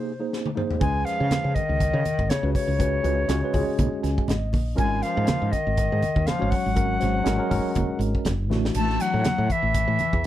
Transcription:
Already playing: bass clarinet C3, tine electric piano A#3 D#4 G#4 C5, flute C5
0.20 tine electric piano A#3 D#4 G#4 C5
0.33 snare
0.46 high tom
0.55 tine electric piano A#3 D#4 G#4 C5, mid tom
0.71 floor tom
0.79 fretless electric bass C#2, tine electric piano G#3 C#4 G#4 B4, bass clarinet G#3, flute G#5, kick, closed hi-hat
1.05 bass clarinet F3, flute F5, snare, closed hi-hat
1.20 fretless electric bass C#3
1.31 snare, closed hi-hat, muted conga, high conga
1.44 fretless electric bass C#3
1.54 bass clarinet D#3, flute D#5, muted fretless electric bass stroke, kick, closed hi-hat
1.69 fretless electric bass C#2
1.80 kick, closed hi-hat, muted conga
1.93 fretless electric bass C#3
2.05 muted fretless electric bass stroke, closed hi-hat, muted conga, high conga
2.19 fretless electric bass G#1, kick
2.29 bass clarinet C#3, flute C#5, muted fretless electric bass stroke, snare, closed hi-hat, high conga
2.42 fretless electric bass C#2, tine electric piano G#3 C#4 F#4 B4
2.53 bass clarinet C#3, flute C#5, kick, open hi-hat
2.67 fretless electric bass C#2
2.79 tine electric piano G#3 C#4 F#4 B4, kick, closed hi-hat
3.03 fretless electric bass C#2, tine electric piano G#3 C#4 F#4 B4, closed hi-hat
3.28 fretless electric bass C#2, tine electric piano G#3 C#4 F#4 C#5, snare, closed hi-hat
3.42 tine electric piano G#3 C#4 F#4 B4
3.53 fretless electric bass C#2, tine electric piano G#3 C#4 F#4 G#4, kick, open hi-hat, low conga
3.68 muted fretless electric bass stroke
3.79 fretless electric bass B1, kick, closed hi-hat, muted conga, high conga
3.93 muted fretless electric bass stroke
4.03 fretless electric bass C#2, tine electric piano G#5, snare, closed hi-hat, muted conga
4.18 kick
4.28 fretless electric bass G#1, tine electric piano D#5, snare, closed hi-hat, high conga, low conga
4.53 fretless electric bass A#1, kick, open hi-hat, high conga
4.75 fretless electric bass G#1, tine electric piano G#3 C#4 F4 A#4, flute G#5, kick, closed hi-hat
4.80 bass clarinet G#3
5.02 bass clarinet F3, flute F5, snare, closed hi-hat
5.17 fretless electric bass G#2
5.27 snare, closed hi-hat, muted conga, high conga
5.42 fretless electric bass G#2
5.51 bass clarinet D#3, flute D#5, kick, closed hi-hat
5.67 fretless electric bass G#1
5.77 kick, closed hi-hat, muted conga
5.92 fretless electric bass G#2
6.03 muted fretless electric bass stroke, closed hi-hat, muted conga, high conga
6.16 fretless electric bass D#2, kick
6.26 bass clarinet F3, flute F5, muted fretless electric bass stroke, snare, closed hi-hat, high conga
6.39 fretless electric bass G#1, tine electric piano G#3 C#4 F#4 C#5
6.50 flute F#5, kick, open hi-hat
6.54 bass clarinet F#3
6.66 fretless electric bass G#1
6.74 tine electric piano G#3 C#4 F#4 A#4, kick, closed hi-hat
6.99 fretless electric bass G#1, tine electric piano G#3 C#4 F#4 C5, snare, closed hi-hat
7.24 fretless electric bass G#1, tine electric piano G#3 C#4 F#4 A#4, snare, closed hi-hat, muted conga
7.37 tine electric piano G#3 C#4 F#4 A#4
7.49 fretless electric bass G#1, tine electric piano G#3 C#4 F#4 A#4, kick, open hi-hat, low conga
7.64 muted fretless electric bass stroke
7.75 fretless electric bass F#1, kick, closed hi-hat, muted conga, high conga
7.89 muted fretless electric bass stroke
7.99 fretless electric bass G#1, closed hi-hat, muted conga
8.15 kick
8.25 fretless electric bass F#1, snare, closed hi-hat, high conga, low conga
8.50 fretless electric bass A1, tine electric piano E3 A3 D4 F#4, snare, high conga
8.65 snare
8.75 fretless electric bass A1, bass clarinet A3, flute A5, closed hi-hat, crash, muted conga
8.90 snare
9.00 bass clarinet F#3, flute F#5, snare, closed hi-hat
9.14 fretless electric bass A2
9.24 snare, closed hi-hat, muted conga, high conga
9.38 fretless electric bass A2
9.50 bass clarinet E3, flute E5, muted fretless electric bass stroke, kick, closed hi-hat
9.62 fretless electric bass A1
9.74 kick, closed hi-hat, muted conga
9.88 fretless electric bass A2
9.99 muted fretless electric bass stroke, closed hi-hat, muted conga, high conga
10.13 fretless electric bass E2, kick
10.23 muted fretless electric bass stroke

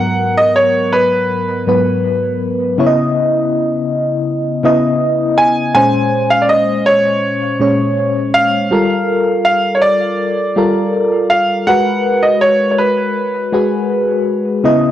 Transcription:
Already playing: fm electric piano G#2 F#3 B3 A#4, grand piano F#5
0.37 grand piano D#5
0.56 grand piano C#5
0.93 grand piano B4
1.67 fm electric piano G#2 F#3 B3 B4
2.78 fm electric piano C#3 B3 E4 C#5
2.87 fm electric piano D#5
4.63 fm electric piano C#3 B3 E4 D#5
5.38 grand piano G#5
5.75 fm electric piano A#2 G#3 C#4 C5, grand piano G#5
6.30 grand piano F5
6.42 grand piano D5
6.49 grand piano D#5
6.86 grand piano C#5
7.60 fm electric piano A#2 G#3 C#4 C#5
8.34 grand piano F5
8.71 fm electric piano G3 F4 A4 A#4
9.45 grand piano F5
9.75 grand piano C#5
9.82 grand piano D5
10.56 fm electric piano G3 F4 A4 A#4
11.30 grand piano F5
11.67 fm electric piano G#3 F#4 A#4 B4, grand piano F#5
12.23 grand piano D#5
12.41 grand piano C#5
12.71 grand piano C#5
12.78 grand piano B4
13.52 fm electric piano G#3 F#4 G#4 B4
14.63 fm electric piano C#3 B3 E4 D#5

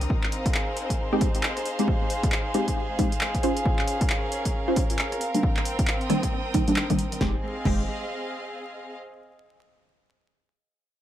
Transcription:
Already playing: string section C4 A#4 D#6
0.01 closed hi-hat
0.10 string section D#4, kick
0.23 string section F5, clap
0.32 open hi-hat
0.37 string section G#4 C5
0.46 kick, closed hi-hat
0.55 clap
0.77 open hi-hat
0.90 kick, closed hi-hat
1.12 synth stab G#3 C4 D#4 G4
1.21 kick, open hi-hat
1.35 closed hi-hat
1.43 clap
1.57 cross-stick, closed hi-hat
1.65 open hi-hat
1.79 synth stab G#3 C4 D#4 G4, closed hi-hat
1.88 kick
2.10 open hi-hat
2.23 kick, closed hi-hat
2.32 clap
2.54 synth stab G#3 C4 D#4 G4, open hi-hat
2.68 kick, closed hi-hat
2.99 synth stab G#3 C4 D#4 G4, kick, open hi-hat
3.12 closed hi-hat
3.21 clap
3.35 kick, closed hi-hat
3.43 synth stab C#4 F4 G#4 C5, open hi-hat
3.57 closed hi-hat
3.65 string section C#4, kick
3.79 clap
3.88 open hi-hat
3.97 string section A#4
4.01 kick, closed hi-hat
4.10 clap
4.32 open hi-hat
4.45 kick, closed hi-hat
4.68 synth stab C#4 F4 G#4 C5
4.76 kick, open hi-hat
4.90 closed hi-hat
4.99 clap
5.12 cross-stick, closed hi-hat
5.21 string section C4, open hi-hat
5.34 synth stab D#3 G3 A#3 D4, closed hi-hat
5.41 string section G5, kick
5.57 clap
5.65 open hi-hat
5.79 kick, closed hi-hat
5.88 clap
6.01 closed hi-hat
6.06 synth stab D#3 G3 A#3 D4, string section D#6, cross-stick, open hi-hat
6.23 kick, cross-stick, closed hi-hat
6.54 synth stab D#3 G3 A#3 D#4, kick, open hi-hat
6.68 synth stab D#3 G3 A#3 D4, closed hi-hat
6.76 clap
6.90 synth stab D#3 G3 A#3 D4, kick, closed hi-hat
6.99 open hi-hat
7.12 closed hi-hat
7.21 808-style bass F1, synth stab G#3 C4 D#4 G4, string section C4, kick, snare
7.29 string section G#4
7.37 string section D#5
7.42 string section F5
7.65 808-style bass F1, synth stab G#3 C4 D#4 G4, kick, crash

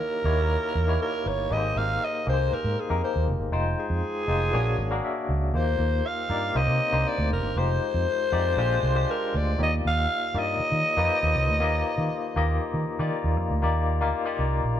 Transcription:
Already playing: tine electric piano A#3 D#4 E4 G4 C#5, alto saxophone A#4
0.24 fingered electric bass D#2, tine electric piano A#3 D#4 E4 G4 C#5
0.75 fingered electric bass E2
0.87 tine electric piano A#3 D#4 E4 G4 C#5
1.02 alto saxophone A#4
1.26 fingered electric bass G1, alto saxophone C#5
1.50 fingered electric bass G#1, tine electric piano A#3 D#4 G4 G#4 B4, alto saxophone D#5
1.57 tine electric piano C5
1.76 fingered electric bass G#1, alto saxophone F5
2.04 alto saxophone D#5
2.26 fingered electric bass C2, tine electric piano A#3 D#4 G4 G#4 A#4, alto saxophone C5
2.34 tine electric piano C5
2.53 alto saxophone A#4, muted fingered electric bass stroke
2.64 fingered electric bass G#2
2.80 alto saxophone G#4
2.89 fingered electric bass F2, tine electric piano A#3 D#4 G4 G#4 A#4
3.04 alto saxophone C5
3.16 fingered electric bass D#2
3.28 fingered electric bass F1
3.40 fingered electric bass G1
3.52 fingered electric bass F1, tine electric piano G#3 D#4 F4 C5 G5
3.79 alto saxophone G#4
3.90 fingered electric bass F2
4.28 fingered electric bass F1, tine electric piano G#3 D#4 F4 G4 C5
4.53 fingered electric bass A#1, tine electric piano A#3 D4 F#4 G#4 C#5
4.78 fingered electric bass G#1, tine electric piano G#5
4.91 tine electric piano A#3 D4 F#4 G#4 A#4
5.04 tine electric piano E5
5.29 fingered electric bass C#2
5.54 fingered electric bass D#2, tine electric piano A#3 D#4 F4 G4 C5, alto saxophone C5
5.79 fingered electric bass D#2
6.07 alto saxophone F5
6.29 fingered electric bass G2, tine electric piano A#3 D#4 F4 G4 D5
6.55 fingered electric bass C2, tine electric piano A#3 C4 D#4 G4 C5, alto saxophone D#5
6.68 fingered electric bass C3
6.92 fingered electric bass C2, tine electric piano A#3 D4 D#4 G4 C5
7.08 alto saxophone D5
7.18 fingered electric bass D2
7.31 fingered electric bass F1, alto saxophone A#4
7.43 fingered electric bass G1
7.56 fingered electric bass F1, tine electric piano G#3 D#4 F4 G4 C5, alto saxophone C5
7.94 fingered electric bass F2
8.32 fingered electric bass F2, tine electric piano G#3 D#4 F4 G4 D5
8.57 fingered electric bass A#1, tine electric piano G#3 D4 F4 G4 C5
8.83 fingered electric bass C2
8.95 tine electric piano G#3 D4 F4 G4 C5
9.11 alto saxophone A#4
9.34 fingered electric bass D2, alto saxophone D5
9.58 fingered electric bass D#2, tine electric piano A#3 D#4 F4 G4 C#5
9.63 tine electric piano D5, alto saxophone D#5
9.85 fingered electric bass D#2, alto saxophone F5
10.34 fingered electric bass G2, tine electric piano A#3 D#4 F4 G4 D5
10.39 alto saxophone D#5, tine electric piano D#5
10.60 muted fingered electric bass stroke
10.72 fingered electric bass D#3
10.97 fingered electric bass F2, tine electric piano A#3 D#4 F4 G4 B4
11.05 tine electric piano C5
11.23 fingered electric bass D#2
11.35 fingered electric bass C2
11.47 fingered electric bass D2
11.60 fingered electric bass D#2, tine electric piano A#3 D#4 F4 G4 D#5
11.98 fingered electric bass D#3
12.36 fingered electric bass D#2, tine electric piano A#3 D#4 F4 G4 D#5
12.74 fingered electric bass D#3
12.99 fingered electric bass D#3, tine electric piano A#3 D#4 F4 G4 D5
13.24 fingered electric bass D#2
13.37 fingered electric bass F2
13.50 fingered electric bass D2
13.62 fingered electric bass D#2, tine electric piano A#3 D#4 F4 G4 D5
14.01 fingered electric bass D2, tine electric piano A#3 D#4 F4 G4 F5
14.25 tine electric piano A#3 D#4 F4 G4 D5
14.39 fingered electric bass C2
14.64 fingered electric bass A#1

